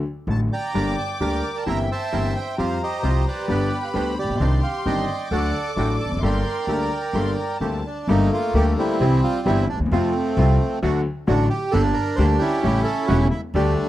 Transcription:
0.27 upright bass A1, grand piano A1 A2 D3 F#3 A3 F#4, bandoneon A5
0.53 bandoneon D5 G5 A#5
0.73 grand piano G1 G2 D3 G3 A#3 G4, upright bass G1, bandoneon D4 G4 A#4, violin section D6
0.99 bandoneon A5
1.20 upright bass D2, grand piano D2 D3 G3 A#3 G4, bandoneon D4 G4 A#4 D5 G5
1.57 bandoneon A5
1.66 upright bass G1, grand piano G1 G2 E3 A#3 C4 G4, bandoneon C4 E4 A#4 E5 A#5, violin section G5
1.91 bandoneon C5 E5 A5
2.12 grand piano G1 G2 E3 A#3 C4 G4, upright bass G1, bandoneon C4 E4 A#4
2.37 bandoneon G5
2.58 grand piano F2 F3 G3 C4 G4, upright bass F2, bandoneon C4 F4 G4 C5 F5, violin section A#5
2.83 bandoneon G4 C5 D#5
3.02 grand piano C2 C3 F3 G3 C4 G4, upright bass C2, bandoneon C4 F4 G4
3.27 bandoneon G4 B4 D5
3.48 grand piano G1 G2 D3 G3 B3 G4, upright bass G1, bandoneon B3 D4 G4, violin section B5
3.82 bandoneon F5 G5
3.94 grand piano D2 D3 G3 B3 G4, upright bass D2, bandoneon B3 D4 G4 C5
4.19 bandoneon G4 D5
4.23 grand piano A1, upright bass A1
4.29 upright bass A#1, grand piano A#1
4.35 grand piano B1, upright bass B1
4.40 upright bass C2, grand piano C2 C3 D#3 C4 D4 G4, bandoneon C4 D4 D#4, violin section C6
4.63 bandoneon F5
4.86 upright bass G1, grand piano G1 G2 D#3 C4 D4 G4, bandoneon C4 D4 D#4 D5 D#5 G5
5.31 upright bass D2, grand piano D2 D3 F#3 A3 D4 A4, bandoneon A3 D4 F#4 A4 D5 F#5, violin section D6
5.76 upright bass A1, grand piano A1 A2 F#3 A3 D4 A4, bandoneon A3 D4 F#4 G5
6.01 bandoneon A5
6.05 upright bass E1, grand piano E2
6.11 upright bass F1, grand piano F2
6.17 upright bass F#1, grand piano F#2
6.22 upright bass G1, grand piano G1 G2 G3 A#3 D4 A4, bandoneon A3 A#3 G4 A#4 D5 G5, violin section C6
6.67 upright bass D2, grand piano D2 D3 G3 A#3 D4 A4, bandoneon A3 A#3 G4, violin section A#5
7.13 upright bass G1, grand piano G1 G2 G3 A#3 D4 A4, bandoneon A3 A#3 G4, violin section C6
7.36 violin section A#5
7.60 upright bass D2, grand piano D2 D3 G3 A#3 D4 A4, bandoneon A3 A#3 C4 G4, violin section A5
7.86 bandoneon D4
8.07 upright bass G1, grand piano G1 G2 G3 A#3 D4 A4, bandoneon A3 A#3 D#4 G4
8.33 bandoneon F4
8.54 upright bass D2, grand piano D2 D3 G3 A#3 D4 A4, bandoneon A3 A#3 G4
8.78 bandoneon G3 C4 E4
9.00 upright bass C2, grand piano C2 C3 E3 G3 C4 G4, bandoneon G3 C4 E4
9.24 bandoneon F4
9.45 upright bass G1, grand piano G1 G2 E3 G3 C4 G4, bandoneon G3 C4 E4
9.69 bandoneon D4
9.74 upright bass D2, grand piano D2
9.80 upright bass D#2, grand piano D#2
9.86 upright bass E2, grand piano E2
9.91 upright bass F2, grand piano F2 C3 F3 A3 F4, bandoneon F3 A3 C4 F4
10.37 upright bass C2, grand piano C2 C3 F3 A3 F4, bandoneon A3 C4 F4
10.82 grand piano D2 D3 F#3 A3 F#4, upright bass D2, bandoneon A3 D4 F#4
11.27 grand piano A1 A2 D3 F#3 A3 F#4, upright bass A1, bandoneon A3 D4 F#4
11.50 bandoneon G4
11.71 grand piano G1 G2 D3 G3 A#3 G4, upright bass G1, bandoneon A#3 D4 G4 A4
11.94 bandoneon A#4
12.16 upright bass D2, grand piano D2 D3 G3 A#3 G4, bandoneon A#3 D4 G4 C5
12.39 bandoneon C#4 E4 G4
12.63 grand piano A1 A2 C#3 G3 A3 E4, upright bass A1, bandoneon A3 C#4 G4
12.84 bandoneon A4
13.07 upright bass E1, grand piano E1 E2 C#3 G3 A3 E4, bandoneon A3 C#4 F#4 G4
13.30 bandoneon E4
13.54 upright bass D2, grand piano D2 D3 G3 A3 G4, bandoneon G3 A3 D4 G4

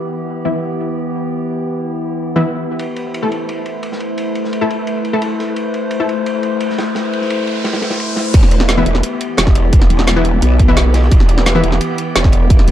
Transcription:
Already playing: synth drone E3 B3 E4 G4
0.45 synth stab E3 B3 E4
2.36 synth stab E3 B3 E4
2.79 synth drone A3 B4 C5, ride
2.96 ride
3.14 ride
3.22 synth stab A3 E4 A4
3.32 ride
3.49 ride
3.66 ride
3.83 ride
3.92 snare
4.00 ride
4.18 ride
4.35 ride
4.44 snare
4.53 ride
4.61 synth stab A3 E4 A4
4.70 ride
4.87 ride
5.05 ride
5.13 synth stab A3 E4 A4
5.22 ride
5.39 snare, ride
5.56 ride, riser
5.74 ride
5.91 ride
6.00 synth stab A3 E4 A4
6.09 ride
6.26 ride
6.43 ride
6.60 ride
6.70 snare
6.78 snare, ride
6.95 snare, ride
7.13 ride
7.21 snare
7.30 ride
7.47 ride
7.64 snare, ride
7.73 snare, ride
7.82 snare, ride
7.90 snare, ride
8.00 ride
8.16 snare, ride
8.34 wobble bass E1, synth drone E3 B3 E4 G4, kick, closed hi-hat, crash, ride
8.43 snare
8.51 closed hi-hat, ride
8.60 snare
8.68 snare, closed hi-hat, ride
8.77 synth stab E3 B3 E4
8.86 wobble bass E1, closed hi-hat, ride
8.95 snare
9.03 closed hi-hat, ride
9.21 closed hi-hat, ride
9.37 wobble bass E1, snare, closed hi-hat, ride
9.46 kick, snare
9.55 closed hi-hat, ride
9.73 kick, closed hi-hat, ride
9.81 snare
9.90 wobble bass E1, closed hi-hat, ride
9.99 snare
10.07 snare, closed hi-hat, ride
10.16 synth stab E3 B3 E4
10.25 closed hi-hat, ride
10.42 wobble bass B1, closed hi-hat, ride
10.59 kick, closed hi-hat, ride
10.68 synth stab E3 B3 E4
10.76 snare, closed hi-hat, ride
10.94 snare, closed hi-hat, ride
11.03 snare
11.12 wobble bass E1, kick, closed hi-hat, ride
11.20 snare
11.29 closed hi-hat, ride
11.38 snare
11.46 snare, closed hi-hat, ride
11.55 synth stab E3 B3 E4
11.64 wobble bass E1, closed hi-hat, ride
11.72 snare
11.81 closed hi-hat, ride
11.98 closed hi-hat, ride
12.16 wobble bass E1, snare, closed hi-hat, ride
12.24 kick, snare
12.32 closed hi-hat, ride
12.50 kick, closed hi-hat, ride
12.59 snare
12.68 wobble bass E1, closed hi-hat, ride

